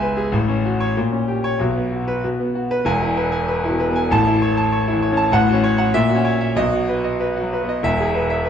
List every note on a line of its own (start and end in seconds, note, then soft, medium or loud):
0.00 0.30 C#2 loud
0.00 0.36 B3 medium
0.00 0.17 G#4 medium
0.00 0.02 B4 medium
0.00 0.27 B4 medium
0.00 0.36 E5 medium
0.00 0.11 G#5 loud
0.17 0.33 G#4 medium
0.32 0.93 A1 loud
0.32 0.93 A2 loud
0.48 0.74 C#4 medium
0.65 0.90 F#4 medium
0.80 0.96 C#5 loud
0.97 1.58 A#2 medium
1.12 1.37 C#4 medium
1.28 1.53 G4 medium
1.44 1.60 C#5 loud
1.59 2.21 B1 medium
1.59 2.22 B2 medium
1.76 2.01 B3 medium
1.92 2.17 F#4 medium
2.08 2.23 B4 medium
2.24 2.85 B2 medium
2.40 2.65 B3 medium
2.55 2.80 F#4 medium
2.71 2.86 B4 loud
2.85 4.07 E1 loud
2.85 4.08 E2 loud
2.85 3.11 G#5 loud
3.02 3.27 E4 medium
3.17 3.43 B4 medium
3.32 3.58 G#5 medium
3.48 3.74 B4 medium
3.64 3.89 E4 medium
3.69 4.03 B2 medium
3.80 4.05 B4 medium
3.90 4.11 B3 medium
3.96 4.11 G#5 medium
4.11 5.29 A1 loud
4.11 5.30 A2 loud
4.11 4.36 A5 loud
4.27 4.51 E4 medium
4.42 4.66 C#5 loud
4.57 4.82 A5 medium
4.72 4.97 C#5 medium
4.88 5.12 E4 medium
4.93 5.25 E3 medium
5.02 5.27 C#5 medium
5.12 5.33 C#4 medium
5.17 5.33 A5 loud
5.32 5.92 A1 loud
5.32 5.92 A2 loud
5.32 5.57 F#5 loud
5.48 5.73 F#4 medium
5.53 5.86 C#4 medium
5.64 5.88 C#5 loud
5.78 5.94 F#5 loud
5.94 6.55 A#2 loud
5.94 6.19 E5 loud
6.09 6.35 F#4 medium
6.15 6.49 C#4 medium
6.25 6.50 C#5 loud
6.41 6.57 E5 medium
6.56 7.79 B1 loud
6.56 7.80 B2 loud
6.56 6.82 D#5 loud
6.73 6.98 F#4 medium
6.89 7.14 B4 medium
7.04 7.30 D#5 medium
7.20 7.46 B4 medium
7.36 7.62 F#4 medium
7.42 7.75 F#3 medium
7.53 7.78 B4 medium
7.63 7.84 B3 medium
7.69 7.84 D#5 medium
7.83 8.49 E1 loud
7.83 8.49 E2 loud
7.83 8.09 E5 loud
8.00 8.24 G#4 medium
8.15 8.39 B4 medium
8.30 8.49 E5 medium
8.45 8.49 B4 medium